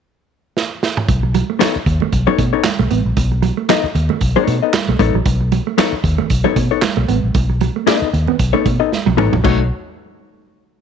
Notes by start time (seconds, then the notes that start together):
0.57 snare
0.83 snare
0.97 mid tom
1.09 B1, kick, closed hi-hat, muted conga
1.23 muted clean electric guitar stroke
1.34 F#3, closed hi-hat, muted conga
1.50 A3
1.59 F#3 B3 D#4 A4 C#5, snare, clap, closed hi-hat, high conga
1.76 muted fingered electric bass stroke
1.86 D#2, muted clean electric guitar stroke, kick, closed hi-hat
2.00 A3, low conga
2.12 B1, muted clean electric guitar stroke, kick, closed hi-hat, muted conga
2.27 F#3 B3 D#4 A4 C#5
2.38 B2 A3, kick, closed hi-hat
2.53 B3 D#4 A4 C#5
2.64 muted clean electric guitar stroke, snare, clap, closed hi-hat, high conga
2.79 B1 A3
2.91 A1 B3, closed hi-hat, high conga
3.05 A#1
3.17 B1, kick, closed hi-hat, muted conga
3.32 muted clean electric guitar stroke
3.42 F#3, closed hi-hat, muted conga
3.57 A3
3.69 F#3 B3 D#4 A4 D#5, snare, clap, closed hi-hat, high conga
3.84 muted fingered electric bass stroke
3.95 D#2, muted clean electric guitar stroke, closed hi-hat
4.09 A3, low conga
4.21 B1, muted clean electric guitar stroke, kick, closed hi-hat, muted conga
4.36 F#3 B3 D#4 A4 C#5
4.47 B2 A3, closed hi-hat
4.62 B3 D#4 A4 D#5
4.74 snare, clap, closed hi-hat, high conga
4.88 B1 A3
4.99 A1 B3 D#4 A4 C#5, muted clean electric guitar stroke, kick, closed hi-hat, high conga
5.14 A#1 F#3
5.26 B1, kick, closed hi-hat, muted conga
5.41 muted clean electric guitar stroke
5.52 F#3, closed hi-hat, muted conga
5.67 A3
5.78 F#3 B3 D#4 A4 C#5, snare, clap, closed hi-hat, high conga
5.92 muted fingered electric bass stroke
6.04 D#2, muted clean electric guitar stroke, kick, closed hi-hat
6.18 A3, low conga
6.30 B1, muted clean electric guitar stroke, kick, closed hi-hat, muted conga
6.44 F#3 B3 D#4 A4 C#5
6.56 B2 A3, kick, closed hi-hat
6.71 B3 D#4 A4 C#5
6.82 muted clean electric guitar stroke, snare, clap, closed hi-hat, high conga
6.97 B1 A3
7.08 A1 B3, closed hi-hat, high conga
7.23 A#1
7.34 B1, kick, closed hi-hat, muted conga
7.50 muted clean electric guitar stroke
7.61 F#3, closed hi-hat, muted conga
7.76 A3
7.87 A3 B3 D#4 A4 D#5, snare, clap, closed hi-hat, high conga
8.02 muted fingered electric bass stroke
8.13 D#2, muted clean electric guitar stroke, closed hi-hat
8.27 B3, low conga
8.39 B1, muted clean electric guitar stroke, kick, closed hi-hat
8.53 A3 B3 D#4 A4 C#5
8.66 B2 A3, kick, closed hi-hat
8.80 B3 D#4 A4 D#5
8.92 snare, high conga
9.06 B1 F#3, high tom
9.17 A1 B3 D#4 A4 C#5, muted clean electric guitar stroke, mid tom, high conga
9.33 A#1 F#3, floor tom
9.44 B1 F#3 A3 D#4 F#4 C#5, kick, crash, muted conga